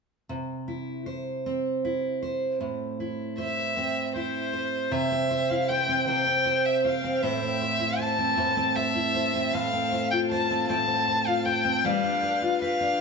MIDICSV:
0, 0, Header, 1, 3, 480
1, 0, Start_track
1, 0, Key_signature, 0, "major"
1, 0, Tempo, 770218
1, 185, Time_signature, 6, 3, 24, 8
1, 8107, End_track
2, 0, Start_track
2, 0, Title_t, "Violin"
2, 0, Program_c, 0, 40
2, 2113, Note_on_c, 0, 76, 68
2, 2566, Note_off_c, 0, 76, 0
2, 2593, Note_on_c, 0, 72, 61
2, 3067, Note_on_c, 0, 76, 72
2, 3076, Note_off_c, 0, 72, 0
2, 3423, Note_on_c, 0, 77, 62
2, 3433, Note_off_c, 0, 76, 0
2, 3540, Note_on_c, 0, 79, 71
2, 3550, Note_off_c, 0, 77, 0
2, 3777, Note_off_c, 0, 79, 0
2, 3780, Note_on_c, 0, 79, 76
2, 4145, Note_on_c, 0, 76, 66
2, 4155, Note_off_c, 0, 79, 0
2, 4266, Note_off_c, 0, 76, 0
2, 4269, Note_on_c, 0, 77, 66
2, 4504, Note_on_c, 0, 76, 76
2, 4513, Note_off_c, 0, 77, 0
2, 4983, Note_on_c, 0, 81, 80
2, 4992, Note_off_c, 0, 76, 0
2, 5460, Note_on_c, 0, 76, 76
2, 5470, Note_off_c, 0, 81, 0
2, 5942, Note_on_c, 0, 77, 84
2, 5951, Note_off_c, 0, 76, 0
2, 6296, Note_off_c, 0, 77, 0
2, 6300, Note_on_c, 0, 79, 68
2, 6356, Note_off_c, 0, 79, 0
2, 6417, Note_on_c, 0, 81, 74
2, 6644, Note_off_c, 0, 81, 0
2, 6656, Note_on_c, 0, 81, 84
2, 7022, Note_on_c, 0, 77, 74
2, 7031, Note_off_c, 0, 81, 0
2, 7138, Note_on_c, 0, 79, 72
2, 7148, Note_off_c, 0, 77, 0
2, 7381, Note_on_c, 0, 77, 82
2, 7391, Note_off_c, 0, 79, 0
2, 7857, Note_off_c, 0, 77, 0
2, 7860, Note_on_c, 0, 77, 85
2, 8107, Note_off_c, 0, 77, 0
2, 8107, End_track
3, 0, Start_track
3, 0, Title_t, "Steel-string acoustic guitar"
3, 0, Program_c, 1, 25
3, 183, Note_on_c, 1, 48, 52
3, 423, Note_on_c, 1, 64, 38
3, 662, Note_on_c, 1, 72, 46
3, 911, Note_on_c, 1, 60, 40
3, 1148, Note_off_c, 1, 64, 0
3, 1151, Note_on_c, 1, 64, 41
3, 1384, Note_off_c, 1, 72, 0
3, 1387, Note_on_c, 1, 72, 45
3, 1622, Note_off_c, 1, 48, 0
3, 1624, Note_on_c, 1, 45, 54
3, 1867, Note_off_c, 1, 64, 0
3, 1869, Note_on_c, 1, 64, 41
3, 2105, Note_off_c, 1, 72, 0
3, 2107, Note_on_c, 1, 72, 49
3, 2345, Note_off_c, 1, 60, 0
3, 2348, Note_on_c, 1, 60, 45
3, 2587, Note_off_c, 1, 64, 0
3, 2589, Note_on_c, 1, 64, 44
3, 2821, Note_off_c, 1, 72, 0
3, 2824, Note_on_c, 1, 72, 49
3, 3060, Note_off_c, 1, 45, 0
3, 3063, Note_on_c, 1, 48, 65
3, 3068, Note_off_c, 1, 72, 0
3, 3070, Note_on_c, 1, 72, 54
3, 3186, Note_off_c, 1, 60, 0
3, 3189, Note_on_c, 1, 60, 44
3, 3304, Note_off_c, 1, 72, 0
3, 3307, Note_on_c, 1, 72, 50
3, 3428, Note_off_c, 1, 64, 0
3, 3430, Note_on_c, 1, 64, 44
3, 3549, Note_off_c, 1, 72, 0
3, 3551, Note_on_c, 1, 72, 54
3, 3665, Note_off_c, 1, 60, 0
3, 3668, Note_on_c, 1, 60, 47
3, 3779, Note_off_c, 1, 48, 0
3, 3786, Note_on_c, 1, 48, 55
3, 3787, Note_off_c, 1, 72, 0
3, 3789, Note_on_c, 1, 72, 51
3, 3901, Note_off_c, 1, 60, 0
3, 3903, Note_on_c, 1, 60, 48
3, 4020, Note_off_c, 1, 72, 0
3, 4023, Note_on_c, 1, 72, 48
3, 4265, Note_off_c, 1, 72, 0
3, 4267, Note_on_c, 1, 72, 53
3, 4386, Note_off_c, 1, 60, 0
3, 4388, Note_on_c, 1, 60, 45
3, 4503, Note_off_c, 1, 48, 0
3, 4506, Note_on_c, 1, 45, 67
3, 4507, Note_off_c, 1, 72, 0
3, 4509, Note_on_c, 1, 72, 55
3, 4624, Note_off_c, 1, 60, 0
3, 4626, Note_on_c, 1, 60, 48
3, 4743, Note_off_c, 1, 72, 0
3, 4746, Note_on_c, 1, 72, 52
3, 4857, Note_off_c, 1, 64, 0
3, 4860, Note_on_c, 1, 64, 44
3, 4975, Note_off_c, 1, 72, 0
3, 4977, Note_on_c, 1, 72, 55
3, 5097, Note_off_c, 1, 60, 0
3, 5100, Note_on_c, 1, 60, 45
3, 5211, Note_off_c, 1, 45, 0
3, 5218, Note_on_c, 1, 45, 60
3, 5221, Note_off_c, 1, 72, 0
3, 5223, Note_on_c, 1, 72, 53
3, 5337, Note_off_c, 1, 60, 0
3, 5339, Note_on_c, 1, 60, 53
3, 5459, Note_off_c, 1, 72, 0
3, 5461, Note_on_c, 1, 72, 47
3, 5572, Note_off_c, 1, 64, 0
3, 5579, Note_on_c, 1, 64, 49
3, 5699, Note_off_c, 1, 72, 0
3, 5701, Note_on_c, 1, 72, 55
3, 5825, Note_off_c, 1, 60, 0
3, 5827, Note_on_c, 1, 60, 46
3, 5938, Note_off_c, 1, 45, 0
3, 5945, Note_on_c, 1, 45, 68
3, 5946, Note_off_c, 1, 72, 0
3, 5949, Note_on_c, 1, 72, 54
3, 5991, Note_off_c, 1, 64, 0
3, 6061, Note_off_c, 1, 60, 0
3, 6063, Note_on_c, 1, 60, 46
3, 6178, Note_off_c, 1, 72, 0
3, 6185, Note_on_c, 1, 72, 50
3, 6306, Note_on_c, 1, 65, 46
3, 6420, Note_off_c, 1, 72, 0
3, 6428, Note_on_c, 1, 72, 58
3, 6540, Note_off_c, 1, 60, 0
3, 6548, Note_on_c, 1, 60, 48
3, 6657, Note_off_c, 1, 45, 0
3, 6660, Note_off_c, 1, 72, 0
3, 6665, Note_on_c, 1, 45, 58
3, 6668, Note_on_c, 1, 72, 49
3, 6772, Note_off_c, 1, 60, 0
3, 6780, Note_on_c, 1, 60, 50
3, 6896, Note_off_c, 1, 72, 0
3, 6904, Note_on_c, 1, 72, 50
3, 7019, Note_off_c, 1, 65, 0
3, 7021, Note_on_c, 1, 65, 45
3, 7131, Note_off_c, 1, 72, 0
3, 7139, Note_on_c, 1, 72, 50
3, 7250, Note_off_c, 1, 60, 0
3, 7258, Note_on_c, 1, 60, 45
3, 7382, Note_off_c, 1, 72, 0
3, 7383, Note_on_c, 1, 55, 65
3, 7386, Note_on_c, 1, 71, 52
3, 7430, Note_off_c, 1, 60, 0
3, 7433, Note_off_c, 1, 45, 0
3, 7501, Note_on_c, 1, 62, 46
3, 7613, Note_off_c, 1, 71, 0
3, 7620, Note_on_c, 1, 71, 53
3, 7639, Note_off_c, 1, 65, 0
3, 7740, Note_on_c, 1, 65, 41
3, 7856, Note_off_c, 1, 71, 0
3, 7864, Note_on_c, 1, 71, 55
3, 7978, Note_off_c, 1, 62, 0
3, 7981, Note_on_c, 1, 62, 45
3, 8093, Note_off_c, 1, 71, 0
3, 8095, Note_off_c, 1, 55, 0
3, 8107, Note_off_c, 1, 62, 0
3, 8107, Note_off_c, 1, 65, 0
3, 8107, End_track
0, 0, End_of_file